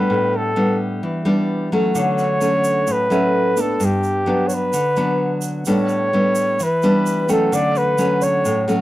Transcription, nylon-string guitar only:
0.00 0.52 G3 medium
0.00 0.52 B3 medium
0.00 0.52 D4 medium
0.10 1.00 A2 medium
0.56 1.22 G3 medium
0.56 1.22 B3 medium
0.56 1.22 D4 medium
1.03 1.93 E3 medium
1.25 1.68 G3 medium
1.25 1.68 B3 medium
1.25 1.68 D4 medium
1.72 2.38 F#3 medium
1.72 2.38 A3 medium
1.72 2.38 C#4 medium
1.95 2.85 D3 medium
2.40 3.07 F#3 soft
2.40 3.07 A3 soft
2.40 3.07 C#4 medium
2.87 3.78 A2 medium
3.10 3.53 F#3 medium
3.10 3.54 A3 medium
3.10 3.54 C#4 medium
3.57 4.23 B3 soft
3.57 4.23 D4 medium
3.80 4.71 G2 medium
4.26 4.73 F#3 soft
4.26 4.73 B3 medium
4.26 4.73 D4 medium
4.73 5.64 D3 medium
4.97 5.62 F#3 medium
4.97 5.63 B3 medium
4.97 5.63 D4 medium
5.66 6.57 A2 medium
5.66 6.09 G3 soft
5.66 6.09 B3 medium
5.66 6.10 D4 medium
6.13 6.59 G3 soft
6.13 6.59 B3 soft
6.13 6.60 D4 medium
6.60 7.50 E3 medium
6.83 7.25 G3 medium
6.83 7.26 B3 medium
6.83 7.26 D4 medium
7.28 7.94 F#3 medium
7.28 7.95 A3 medium
7.28 7.95 C#4 medium
7.52 8.43 D3 medium
7.98 8.64 F#3 medium
7.98 8.64 A3 soft
7.98 8.64 C#4 medium
8.45 8.81 A2 medium
8.68 8.81 F#3 medium
8.68 8.81 A3 medium
8.68 8.81 C#4 medium

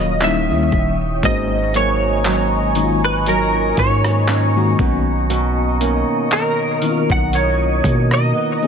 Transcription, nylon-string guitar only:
0.00 0.21 D#3 medium
0.00 0.32 F#3 medium
0.00 1.74 C#4 medium
0.00 0.33 F4 medium
0.21 1.78 D#3 medium
1.23 4.79 G#2 medium
1.74 2.25 F#3 medium
1.74 3.77 A#3 medium
1.74 4.28 C#4 medium
2.25 3.26 F#3 medium
3.27 5.80 F#3 medium
3.77 5.33 A#3 medium
4.28 5.33 C#4 medium
4.79 5.29 B2 medium
5.30 8.67 B2 medium
5.81 6.31 D#3 medium
5.81 7.84 A#3 medium
5.81 8.34 C#4 medium
6.31 7.33 D#3 medium
7.33 8.67 D#3 medium
7.84 8.67 A#3 medium
8.35 8.62 B3 medium
8.62 8.67 C#4 medium

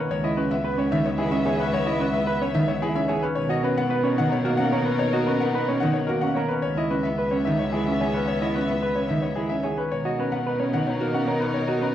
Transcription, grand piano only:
0.00 0.14 B4 medium
0.10 0.27 C#5 medium
0.23 0.41 D#5 medium
0.37 0.54 B4 medium
0.51 0.68 E5 medium
0.64 0.82 B4 medium
0.79 0.95 C#5 medium
0.92 1.09 E5 medium
1.06 1.23 C#5 medium
1.18 1.36 G#4 medium
1.31 1.49 E5 medium
1.46 1.63 C#5 medium
1.60 1.77 B4 medium
1.73 1.91 C#5 medium
1.86 2.04 D#5 medium
2.00 2.18 B4 medium
2.13 2.31 E5 medium
2.26 2.45 B4 medium
2.41 2.59 C#5 medium
2.55 2.72 E5 loud
2.68 2.86 C#5 medium
2.82 3.00 G#4 medium
2.95 3.13 E5 medium
3.08 3.26 C#5 medium
3.22 3.40 B4 medium
3.36 3.54 C#5 medium
3.50 3.68 D#5 medium
3.64 3.82 B4 medium
3.78 3.95 F#5 medium
3.90 4.08 B4 medium
4.05 4.22 C#5 medium
4.18 4.36 F#5 loud
4.32 4.50 C#5 medium
4.45 4.63 A#4 medium
4.58 4.76 F#5 medium
4.73 4.90 C#5 medium
4.85 5.04 B4 medium
4.99 5.17 C#5 medium
5.13 5.31 D#5 medium
5.26 5.44 B4 medium
5.40 5.58 F#5 medium
5.54 5.72 B4 medium
5.68 5.86 C#5 medium
5.80 5.99 F#5 medium
5.93 6.12 C#5 medium
6.07 6.26 A#4 medium
6.21 6.40 F#5 medium
6.35 6.54 C#5 medium
6.48 6.67 B4 medium
6.62 6.81 C#5 medium
6.78 6.95 D#5 medium
6.91 7.08 B4 medium
7.03 7.22 E5 medium
7.18 7.36 B4 medium
7.31 7.49 C#5 medium
7.45 7.63 E5 medium
7.59 7.77 C#5 medium
7.72 7.90 G#4 medium
7.86 8.04 E5 medium
8.01 8.18 C#5 medium
8.14 8.32 B4 medium
8.28 8.45 C#5 medium
8.41 8.59 D#5 medium
8.55 8.72 B4 medium
8.68 8.86 E5 medium
8.82 9.00 B4 medium
8.96 9.13 C#5 medium
9.09 9.27 E5 medium
9.22 9.40 C#5 medium
9.36 9.54 G#4 medium
9.49 9.67 E5 medium
9.63 9.81 C#5 medium
9.78 9.95 B4 medium
9.92 10.09 C#5 medium
10.05 10.23 D#5 medium
10.19 10.36 B4 medium
10.32 10.50 F#5 medium
10.46 10.63 B4 medium
10.59 10.77 C#5 medium
10.74 10.91 F#5 medium
10.87 11.04 C#5 medium
11.01 11.18 A#4 medium
11.14 11.32 F#5 medium
11.27 11.45 C#5 medium
11.40 11.58 B4 medium
11.54 11.72 C#5 medium
11.68 11.86 D#5 medium
11.82 11.95 B4 medium

